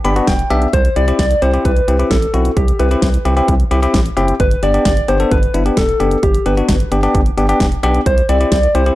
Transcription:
0.05 analog synth bass G1, tine electric piano B3 D4 G4 B5, closed hi-hat
0.16 tine electric piano B3 D4 F#4, closed hi-hat
0.27 analog synth bass E1, tine electric piano G5, kick, snare, closed hi-hat
0.39 closed hi-hat
0.50 analog synth bass B1, tine electric piano B3 D4 G4 E5, closed hi-hat
0.62 closed hi-hat
0.73 analog synth bass C2, soft synth lead C5, kick, closed hi-hat
0.85 closed hi-hat
0.96 analog synth bass C2, tine electric piano C4 E4 G4, soft synth lead D5, closed hi-hat
1.08 tine electric piano C4 E4 G4, closed hi-hat
1.19 analog synth bass C2, soft synth lead D5, kick, snare, closed hi-hat
1.31 closed hi-hat
1.42 analog synth bass C2, tine electric piano C4 E4 G4, soft synth lead C5, closed hi-hat
1.53 tine electric piano C4 E4 G4, closed hi-hat
1.65 analog synth bass C2, soft synth lead B4, kick, closed hi-hat
1.76 closed hi-hat
1.88 analog synth bass C2, tine electric piano C4 E4 G4, closed hi-hat
1.99 tine electric piano C4 E4 G4, closed hi-hat
2.11 analog synth bass A1, soft synth lead A4, kick, snare, closed hi-hat
2.22 closed hi-hat
2.34 analog synth bass B1, tine electric piano C4 E4 F#4, closed hi-hat
2.45 closed hi-hat
2.57 analog synth bass C2, soft synth lead G4, kick, closed hi-hat
2.68 closed hi-hat
2.80 analog synth bass C2, tine electric piano C4 E4 G4, soft synth lead B4, closed hi-hat
2.91 tine electric piano C4 E4 G4, closed hi-hat
3.02 analog synth bass C2, kick, snare, closed hi-hat
3.14 closed hi-hat
3.25 analog synth bass C2, tine electric piano C4 E4 G4, closed hi-hat
3.37 tine electric piano C4 E4 G4, closed hi-hat
3.48 analog synth bass C2, kick, closed hi-hat
3.60 closed hi-hat
3.71 analog synth bass C2, tine electric piano C4 E4 G4, closed hi-hat
3.83 tine electric piano C4 E4 G4, closed hi-hat
3.94 analog synth bass A1, kick, snare, closed hi-hat
4.06 closed hi-hat
4.17 analog synth bass F#1, tine electric piano C4 E4 G4, closed hi-hat
4.28 closed hi-hat
4.40 analog synth bass G1, soft synth lead B4, kick, closed hi-hat
4.51 closed hi-hat
4.63 analog synth bass G1, tine electric piano B3 D4 G4, soft synth lead D5, closed hi-hat
4.74 tine electric piano B3 D4 G4, closed hi-hat
4.85 analog synth bass G1, soft synth lead D5, kick, snare, closed hi-hat
4.97 closed hi-hat
5.08 analog synth bass G1, tine electric piano B3 D4 G4, soft synth lead C5, closed hi-hat
5.20 tine electric piano B3 D4 A4, closed hi-hat
5.31 analog synth bass G1, soft synth lead B4, kick, closed hi-hat
5.43 closed hi-hat
5.54 analog synth bass G1, tine electric piano B3 D4 E4, closed hi-hat
5.66 tine electric piano B3 D4 G4, closed hi-hat
5.77 analog synth bass E1, soft synth lead A4, kick, snare, closed hi-hat
5.89 closed hi-hat
6.00 analog synth bass F#1, tine electric piano B3 D4 G4, closed hi-hat
6.11 closed hi-hat
6.23 analog synth bass G1, soft synth lead G4, kick, closed hi-hat
6.34 closed hi-hat
6.46 analog synth bass G1, tine electric piano B3 D4 G4, soft synth lead B4, closed hi-hat
6.57 tine electric piano B3 D4 F#4, closed hi-hat
6.69 analog synth bass G1, kick, snare, closed hi-hat
6.80 closed hi-hat
6.92 analog synth bass G1, tine electric piano B3 D4 G4, closed hi-hat
7.03 tine electric piano B3 D4 G4, closed hi-hat
7.15 analog synth bass G1, kick, closed hi-hat
7.26 closed hi-hat
7.37 analog synth bass G1, tine electric piano B3 D4 G4, closed hi-hat
7.49 tine electric piano B3 D4 G4, closed hi-hat
7.60 analog synth bass E1, kick, snare, closed hi-hat
7.72 closed hi-hat
7.83 analog synth bass B1, tine electric piano B3 D4 G4, closed hi-hat
7.94 closed hi-hat
8.06 analog synth bass C2, soft synth lead C5, kick, closed hi-hat
8.18 closed hi-hat
8.29 analog synth bass C2, tine electric piano C4 E4 G4, soft synth lead D5, closed hi-hat
8.40 tine electric piano C4 E4 G4, closed hi-hat
8.52 analog synth bass C2, soft synth lead D5, kick, snare, closed hi-hat
8.63 closed hi-hat
8.75 analog synth bass C2, tine electric piano C4 E4 G4, soft synth lead C5, closed hi-hat
8.86 tine electric piano C4 E4 G4, closed hi-hat

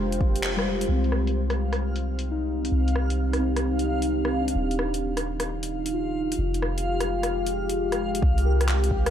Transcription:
Already playing: 808-style bass F1, synth keys G#3 D4, ambient pad F4 G4 C5
0.12 closed hi-hat
0.21 kick
0.36 closed hi-hat
0.43 clap
0.56 synth keys G3, cross-stick
0.81 closed hi-hat
0.88 808-style bass C2, ambient pad C4 D#4 G4, synth keys C4, synth texture F5
1.04 closed hi-hat
1.12 cross-stick
1.27 closed hi-hat
1.50 cross-stick, closed hi-hat
1.73 cross-stick, closed hi-hat
1.96 closed hi-hat
2.19 closed hi-hat
2.31 synth keys D#4
2.65 closed hi-hat
2.72 808-style bass C2
2.88 closed hi-hat
2.96 cross-stick
3.10 closed hi-hat
3.33 cross-stick, closed hi-hat
3.39 synth keys C4
3.57 cross-stick, closed hi-hat
3.79 closed hi-hat
3.84 synth keys D#4
4.02 closed hi-hat
4.25 cross-stick
4.40 synth keys D4
4.48 closed hi-hat
4.55 808-style bass D#1, ambient pad D#4 F4
4.71 closed hi-hat
4.79 cross-stick
4.94 closed hi-hat
5.17 cross-stick, closed hi-hat
5.40 cross-stick, closed hi-hat
5.63 closed hi-hat
5.86 closed hi-hat
5.93 synth keys F4
6.32 closed hi-hat
6.38 808-style bass F1, ambient pad G#3 G4
6.54 closed hi-hat
6.62 cross-stick
6.78 closed hi-hat
7.01 cross-stick, closed hi-hat
7.23 cross-stick, closed hi-hat
7.46 closed hi-hat
7.69 closed hi-hat
7.92 cross-stick, closed hi-hat
8.15 closed hi-hat
8.22 808-style bass C2, ambient pad D#3 C4 G4, synth texture G5, kick
8.38 closed hi-hat
8.45 synth keys A#4
8.61 cross-stick, closed hi-hat
8.68 clap
8.84 closed hi-hat
8.91 kick
9.06 cross-stick, closed hi-hat

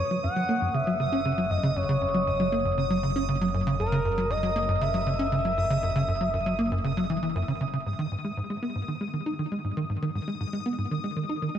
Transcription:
Already playing: synth drone F#1, analog synth lead C#5, synth texture D#6
0.11 analog synth bass F#3
0.23 analog synth bass F#2, analog synth lead F#5
0.36 analog synth bass F#3
0.49 analog synth bass A#3
0.61 analog synth bass F#2
0.74 analog synth bass C#3, analog synth lead E5
0.87 analog synth bass F#3
1.00 analog synth bass C#3
1.12 analog synth bass C#4
1.25 analog synth bass C#3
1.38 analog synth bass F#3
1.50 analog synth bass F#2, analog synth lead D#5
1.63 analog synth bass C#3
1.69 analog synth lead D#5
1.75 analog synth bass F#2, analog synth lead C#5
1.89 analog synth bass C#3
2.01 analog synth bass F#2
2.14 analog synth bass F#3
2.27 analog synth bass F#2
2.40 analog synth bass F#3
2.52 analog synth bass A#3
2.65 analog synth bass F#2
2.78 analog synth bass C#3
2.90 analog synth bass F#3
3.03 analog synth bass C#3
3.16 analog synth bass C#4
3.29 analog synth bass C#3
3.41 analog synth bass F#3
3.54 analog synth bass F#2
3.67 analog synth bass C#3
3.79 analog synth bass F#2, analog synth lead A#4
3.92 analog synth bass C#3
4.05 analog synth bass F#2
4.18 analog synth bass F#3
4.30 analog synth bass F#2, analog synth lead D#5
4.43 analog synth bass F#3
4.56 analog synth bass A#3
4.69 analog synth bass F#2
4.81 analog synth bass C#3, analog synth lead E5
4.94 analog synth bass F#3
5.07 analog synth bass C#3
5.19 analog synth bass C#4
5.32 analog synth bass C#3
5.45 analog synth bass F#3
5.57 analog synth bass F#2
5.70 analog synth bass C#3
5.83 analog synth bass F#2
5.95 analog synth bass C#3
6.08 analog synth bass F#2
6.21 analog synth bass F#3
6.34 analog synth bass F#2
6.46 analog synth bass F#3
6.59 analog synth bass A#3
6.72 analog synth bass F#2
6.84 analog synth bass C#3
6.97 analog synth bass F#3
7.10 analog synth bass E3
7.23 analog synth bass E3
7.35 analog synth bass F#2
7.48 analog synth bass C#3
7.61 analog synth bass C#3
7.73 analog synth bass C#3
7.86 analog synth bass G#2, synth texture D#6
7.99 analog synth bass D#3
8.11 analog synth bass G#2
8.24 analog synth bass G#3
8.37 analog synth bass G#2
8.50 analog synth bass G#3
8.62 analog synth bass B3
8.75 analog synth bass G#2
8.88 analog synth bass D#3
9.01 analog synth bass G#3
9.13 analog synth bass D#3
9.26 analog synth bass D#4
9.39 analog synth bass D#3
9.52 analog synth bass G#3
9.64 analog synth bass G#2
9.77 analog synth bass D#3
9.89 analog synth bass G#2
10.02 analog synth bass D#3
10.15 analog synth bass G#2
10.28 analog synth bass G#3
10.40 analog synth bass G#2
10.53 analog synth bass G#3
10.66 analog synth bass B3
10.78 analog synth bass G#2
10.91 analog synth bass D#3
11.04 analog synth bass G#3
11.16 analog synth bass D#3
11.29 analog synth bass D#4
11.42 analog synth bass D#3
11.55 analog synth bass G#3

